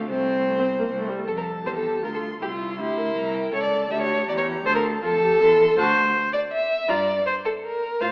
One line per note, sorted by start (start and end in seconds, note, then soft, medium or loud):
0.00 0.11 D2 medium
0.09 0.89 C2 medium
0.09 0.44 A3 soft
0.09 1.06 C4 medium
0.09 1.06 C5 medium
0.48 0.52 A3 medium
0.59 0.67 C4 medium
0.79 0.87 A#3 medium
0.89 1.08 C2 medium
0.99 1.10 A3 medium
1.08 1.20 G3 medium
1.19 1.27 A3 medium
1.27 1.64 F2 soft
1.27 1.63 A4 soft
1.27 1.31 A4 medium
1.27 2.06 A5 soft
1.37 1.45 A#4 medium
1.65 2.03 E2 soft
1.65 2.04 G4 soft
1.65 1.70 C5 medium
1.76 2.03 A4 medium
2.03 2.41 D2 soft
2.03 2.41 F4 soft
2.03 2.08 A#4 medium
2.03 2.41 C6 soft
2.14 2.22 A4 soft
2.41 2.81 C2 soft
2.41 2.80 E4 soft
2.41 2.46 G4 medium
2.41 3.19 C6 soft
2.52 2.79 F4 medium
2.79 3.16 D2 soft
2.79 3.52 E4 medium
2.79 2.98 G4 soft
2.97 3.54 A#4 soft
3.16 3.53 C2 medium
3.16 3.36 A#5 medium
3.35 3.55 G5 soft
3.52 3.90 C#2 soft
3.52 3.92 A4 soft
3.52 3.63 C#5 medium
3.52 3.90 A5 medium
3.63 3.93 D5 medium
3.90 4.27 D2 medium
3.90 4.27 G4 soft
3.90 4.00 E5 medium
3.90 4.30 A5 soft
4.01 4.28 C#5 medium
4.28 4.65 E2 medium
4.28 4.66 G4 medium
4.28 4.32 D5 medium
4.28 4.67 A#5 soft
4.38 4.46 C#5 medium
4.65 5.02 D2 medium
4.65 5.02 A4 soft
4.65 4.75 C5 medium
4.65 5.02 A5 medium
4.75 4.83 A#4 medium
5.02 5.39 F2 medium
5.02 5.10 F4 medium
5.02 5.77 A4 loud
5.02 5.42 A5 medium
5.21 5.42 G4 medium
5.40 5.77 E2 medium
5.40 5.77 A4 medium
5.40 5.78 C6 medium
5.77 6.09 D2 medium
5.77 5.95 F#4 medium
5.77 6.32 C5 loud
5.77 5.95 A5 medium
6.33 6.40 D5 medium
6.51 6.91 E5 medium
6.88 7.20 G2 medium
6.88 7.06 F4 medium
6.88 7.26 D5 loud
6.88 7.06 A#5 medium
7.26 7.34 C5 medium
7.45 7.52 A4 medium
7.64 8.02 A#4 medium
8.00 8.12 A2 medium
8.00 8.12 F4 soft
8.00 8.12 C5 medium
8.00 8.12 F5 medium